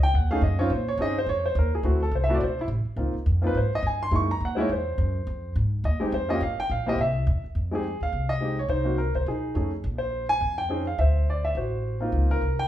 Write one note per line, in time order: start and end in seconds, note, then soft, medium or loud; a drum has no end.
0.00 0.12 C#2 medium
0.00 0.14 G5 loud
0.14 0.41 D#2 medium
0.14 0.30 F#5 medium
0.31 0.41 A3 medium
0.31 0.41 C#4 medium
0.31 0.41 D#4 medium
0.31 0.42 G#4 medium
0.31 0.42 F5 loud
0.41 0.69 F#2 medium
0.41 0.59 D#5 medium
0.59 0.69 C4 medium
0.59 0.69 C#4 medium
0.59 0.70 D#4 medium
0.59 0.70 F4 medium
0.59 0.70 C#5 loud
0.70 0.97 A#2 medium
0.70 0.87 C5 medium
0.89 0.99 C#5 medium
0.97 1.26 G2 medium
0.97 1.14 C4 medium
0.97 1.14 C#4 medium
0.97 1.15 D#4 medium
0.97 1.15 G#4 medium
1.02 1.17 D#5 loud
1.18 1.28 C5 medium
1.26 1.54 F2 medium
1.26 1.44 C#5 loud
1.46 1.56 C5 medium
1.55 1.83 D#2 medium
1.55 1.73 A#4 medium
1.75 1.85 G#4 medium
1.83 2.11 D2 medium
1.83 1.99 A3 medium
1.83 1.99 C4 medium
1.83 2.00 E4 medium
1.83 2.00 F#4 medium
2.03 2.13 A4 medium
2.11 2.40 C2 medium
2.15 2.23 C5 medium
2.24 2.32 E5 medium
2.29 2.39 A3 medium
2.29 2.40 C4 medium
2.29 2.40 E4 medium
2.29 2.40 F#4 medium
2.34 2.42 D5 medium
2.41 2.67 B1 medium
2.41 2.59 C5 medium
2.61 2.67 E4 medium
2.68 2.84 A1 medium
2.85 muted upright bass stroke soft
2.96 3.13 C#2 medium
2.96 3.13 A#3 medium
2.96 3.13 C4 medium
2.96 3.13 D#4 soft
2.96 3.14 F4 medium
3.13 muted upright bass stroke soft
3.26 3.54 F2 medium
3.42 3.53 A#3 medium
3.42 3.54 C4 medium
3.42 3.54 D#4 medium
3.42 3.54 F4 medium
3.47 3.56 B4 medium
3.54 3.82 G#2 medium
3.54 3.73 C5 medium
3.75 3.85 D#5 loud
3.83 4.11 G2 medium
3.87 4.02 G#5 medium
4.03 4.13 C6 loud
4.11 4.39 F#2 medium
4.11 4.27 G#3 medium
4.11 4.27 A#3 medium
4.11 4.28 D#4 medium
4.11 4.28 E4 medium
4.16 4.30 C#6 medium
4.31 4.41 A#5 loud
4.40 4.68 D#2 medium
4.45 4.59 F#5 medium
4.55 4.67 G#3 medium
4.55 4.68 A#3 medium
4.55 4.68 D#4 medium
4.55 4.68 E4 medium
4.55 4.57 C5 medium
4.60 4.70 C#5 medium
4.69 4.97 E2 medium
4.69 5.52 C5 medium
4.98 5.25 F#2 medium
5.27 5.54 F2 medium
5.56 5.83 G#2 medium
5.84 5.99 D#2 medium
5.84 6.01 D#5 medium
6.00 6.11 G#3 medium
6.00 6.11 C4 medium
6.00 6.11 D#4 medium
6.00 6.11 G4 medium
6.00 muted upright bass stroke soft
6.12 6.40 F2 medium
6.12 6.29 C5 medium
6.29 6.39 A#3 medium
6.29 6.39 C#4 medium
6.29 6.40 F4 medium
6.29 6.40 G4 medium
6.29 6.41 D#5 loud
6.41 6.56 G2 medium
6.41 6.58 F5 medium
6.58 6.70 G5 loud
6.58 muted upright bass stroke soft
6.70 6.97 A#1 medium
6.70 6.87 F5 medium
6.86 6.97 A#3 medium
6.86 6.97 C4 medium
6.86 6.97 E4 medium
6.86 6.98 G4 medium
6.86 6.99 D#5 loud
6.98 7.26 C2 medium
6.98 7.42 E5 medium
7.27 7.42 E2 medium
7.44 muted upright bass stroke soft
7.55 7.97 F2 medium
7.71 7.82 G#3 medium
7.71 7.83 C4 medium
7.71 7.83 D#4 medium
7.71 7.83 G4 medium
7.71 8.00 G#4 medium
8.01 8.11 D#2 medium
8.01 8.31 F5 medium
8.12 8.66 C2 medium
8.29 8.58 D#5 loud
8.41 8.56 G#3 medium
8.41 8.56 C4 soft
8.41 8.56 D#4 soft
8.41 8.57 G4 medium
8.59 8.70 C#5 medium
8.68 9.11 C2 medium
8.68 8.84 D#4 medium
8.68 8.99 C5 medium
8.84 8.96 A#3 medium
8.84 8.96 C4 medium
8.84 8.96 D#4 medium
8.84 8.96 F#4 medium
8.98 9.14 A#4 medium
9.14 9.25 C2 medium
9.14 9.26 C5 medium
9.26 9.53 B1 medium
9.26 9.54 D#4 medium
9.26 9.55 G#4 medium
9.54 9.82 F2 medium
9.54 9.70 A3 medium
9.54 9.70 C#4 medium
9.54 9.70 D#4 soft
9.54 9.71 G#4 medium
9.84 10.38 A#1 medium
9.98 10.26 C5 medium
10.29 10.59 G#5 loud
10.41 10.95 F2 medium
10.58 10.84 G5 loud
10.69 10.84 C4 medium
10.69 10.85 C#4 medium
10.69 10.85 D#4 medium
10.69 10.85 G#4 medium
10.87 10.98 F5 medium
10.98 11.52 D2 medium
10.98 11.53 C5 medium
10.98 11.28 E5 medium
11.30 11.45 D5 medium
11.45 11.56 E5 medium
11.55 12.09 A1 medium
11.55 12.09 F#4 medium
11.55 11.98 C5 medium
12.00 12.39 A#3 medium
12.00 12.38 C4 medium
12.00 12.39 D#4 medium
12.00 12.39 F4 medium
12.12 12.39 C#2 medium
12.31 12.59 A#4 loud
12.41 12.68 C2 medium
12.59 12.68 G5 loud